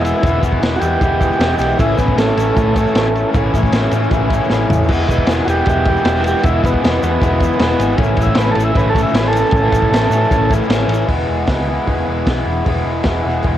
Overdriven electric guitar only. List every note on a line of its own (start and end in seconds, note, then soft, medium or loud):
0.00 0.22 E3 medium
0.00 0.22 G#3 medium
0.00 0.23 B3 medium
0.00 0.25 E4 medium
0.22 0.60 E3 medium
0.22 0.42 G#3 medium
0.22 0.41 B3 loud
0.22 0.39 E4 loud
0.40 0.61 G#3 medium
0.40 0.63 B3 medium
0.40 0.63 E4 medium
0.60 1.00 E3 medium
0.60 0.82 G#3 medium
0.60 0.81 B3 medium
0.60 0.79 E4 medium
0.79 1.01 G#3 medium
0.79 1.01 B3 medium
0.79 1.04 E4 medium
1.00 1.39 E3 loud
1.00 1.22 G#3 medium
1.00 1.20 B3 loud
1.00 1.19 E4 loud
1.20 1.40 G#3 medium
1.20 1.41 B3 medium
1.20 1.43 E4 medium
1.39 1.78 E3 medium
1.39 1.78 G#3 medium
1.39 1.79 B3 medium
1.39 1.81 E4 medium
1.77 2.54 A2 loud
1.77 2.15 E3 medium
1.77 1.99 A3 loud
1.77 1.99 C#4 loud
1.81 1.96 E4 loud
1.96 2.15 A3 medium
1.96 2.17 C#4 medium
1.96 2.19 E4 medium
2.16 2.56 E3 medium
2.16 2.40 A3 medium
2.16 2.37 C#4 medium
2.16 2.37 E4 medium
2.37 2.57 A3 medium
2.37 2.57 C#4 medium
2.37 2.58 E4 medium
2.55 2.94 A2 loud
2.55 2.96 E3 loud
2.55 2.78 A3 medium
2.55 2.76 C#4 loud
2.55 2.75 E4 loud
2.75 2.97 A3 medium
2.75 2.98 C#4 medium
2.75 3.00 E4 medium
2.96 3.35 E3 medium
2.96 3.35 A3 medium
2.96 3.35 C#4 medium
3.01 3.37 E4 medium
3.34 3.73 A2 medium
3.34 3.74 E3 medium
3.34 3.56 A3 loud
3.34 3.55 C#4 medium
3.34 3.54 E4 loud
3.54 3.74 A3 medium
3.54 3.74 C#4 medium
3.54 3.77 E4 medium
3.74 4.11 E3 medium
3.74 3.95 A3 medium
3.74 3.94 C#4 medium
3.74 3.92 E4 medium
3.93 4.11 A3 medium
3.93 4.12 C#4 medium
3.93 4.13 E4 medium
4.10 4.49 A2 medium
4.10 4.48 E3 loud
4.10 4.32 A3 loud
4.10 4.29 C#4 loud
4.10 4.28 E4 loud
4.28 4.50 C#4 medium
4.28 4.51 E4 medium
4.33 4.48 A3 medium
4.48 4.86 E3 medium
4.48 4.87 A3 medium
4.48 4.88 C#4 medium
4.48 4.90 E4 medium
4.86 5.28 E3 medium
4.86 5.10 G#3 medium
4.86 5.08 B3 medium
4.86 5.07 E4 medium
5.07 5.30 G#3 medium
5.07 5.31 B3 medium
5.07 5.31 E4 medium
5.28 5.65 E3 medium
5.28 5.50 G#3 medium
5.28 5.49 B3 medium
5.28 5.46 E4 medium
5.46 5.65 G#3 medium
5.46 5.67 B3 medium
5.46 5.69 E4 medium
5.66 6.04 E3 loud
5.66 5.89 G#3 medium
5.66 5.87 B3 loud
5.70 5.86 E4 loud
5.86 6.06 B3 medium
5.86 6.08 E4 medium
5.90 6.05 G#3 medium
6.05 6.42 E3 medium
6.05 6.43 G#3 medium
6.05 6.45 B3 medium
6.09 6.46 E4 medium
6.43 6.82 E3 medium
6.43 6.65 G#3 loud
6.43 6.64 B3 medium
6.47 6.63 E4 loud
6.63 6.82 G#3 medium
6.63 6.83 B3 medium
6.63 6.86 E4 medium
6.82 7.21 E3 medium
6.82 7.03 G#3 medium
6.82 7.02 B3 medium
6.87 7.01 E4 medium
7.01 7.21 G#3 medium
7.01 7.23 B3 medium
7.01 7.23 E4 medium
7.21 7.58 E3 medium
7.21 7.43 G#3 loud
7.21 7.41 B3 loud
7.21 7.40 E4 loud
7.40 7.59 G#3 medium
7.40 7.60 B3 medium
7.40 7.61 E4 medium
7.59 7.96 E3 medium
7.59 7.97 G#3 medium
7.59 7.98 B3 medium
7.59 7.98 E4 medium
7.96 8.73 A2 medium
7.96 8.35 E3 medium
7.96 8.20 A3 loud
7.96 8.19 C#4 loud
7.96 8.16 E4 medium
8.17 8.38 A3 medium
8.17 8.39 C#4 medium
8.17 8.39 E4 medium
8.36 8.74 E3 medium
8.36 8.58 A3 medium
8.36 8.56 C#4 medium
8.40 8.55 E4 loud
8.55 8.74 A3 medium
8.55 8.75 C#4 medium
8.55 8.76 E4 medium
8.73 9.13 A2 loud
8.73 9.11 E3 loud
8.73 8.93 A3 loud
8.73 8.91 C#4 loud
8.73 8.91 E4 loud
8.91 9.13 A3 medium
8.91 9.14 C#4 medium
8.91 9.15 E4 medium
9.11 9.51 E3 medium
9.11 9.52 A3 medium
9.11 9.53 C#4 medium
9.11 9.54 E4 loud
9.52 9.91 A2 loud
9.52 9.90 E3 loud
9.52 9.75 A3 loud
9.52 9.73 C#4 medium
9.52 9.72 E4 loud
9.73 9.90 A3 medium
9.73 9.93 C#4 medium
9.73 9.94 E4 medium
9.91 10.29 E3 medium
9.91 10.11 A3 medium
9.91 10.10 C#4 medium
9.95 10.08 E4 medium
10.09 10.30 A3 medium
10.09 10.30 C#4 medium
10.09 10.32 E4 medium
10.30 10.70 A2 medium
10.30 10.67 E3 loud
10.30 10.51 A3 loud
10.30 10.51 C#4 loud
10.30 10.49 E4 loud
10.50 10.69 A3 medium
10.50 10.69 C#4 medium
10.50 10.71 E4 medium
10.69 11.05 E3 medium
10.69 11.07 A3 medium
10.69 11.08 C#4 medium
10.69 11.09 E4 medium
11.06 11.47 E3 medium
11.06 11.47 G#3 medium
11.06 11.49 B3 medium
11.06 11.50 E4 medium
11.47 11.86 E3 medium
11.47 11.71 G#3 medium
11.47 11.69 B3 medium
11.47 11.68 E4 medium
11.68 11.85 G#3 medium
11.68 11.87 B3 medium
11.68 11.89 E4 medium
11.86 12.27 E3 loud
11.86 12.09 G#3 medium
11.86 12.08 B3 loud
11.86 12.05 E4 medium
12.06 12.29 G#3 medium
12.06 12.29 B3 medium
12.06 12.31 E4 medium
12.28 12.66 E3 medium
12.28 12.67 G#3 medium
12.28 12.68 B3 medium
12.32 12.69 E4 medium
12.66 13.04 E3 medium
12.66 13.05 G#3 medium
12.66 13.07 B3 medium
12.66 13.08 E4 medium
13.04 13.44 E3 medium
13.04 13.27 G#3 medium
13.04 13.25 B3 medium
13.04 13.24 E4 medium
13.24 13.44 G#3 medium
13.24 13.45 B3 medium
13.24 13.47 E4 medium
13.44 13.58 E3 loud
13.44 13.58 G#3 loud
13.44 13.58 B3 loud
13.44 13.58 E4 loud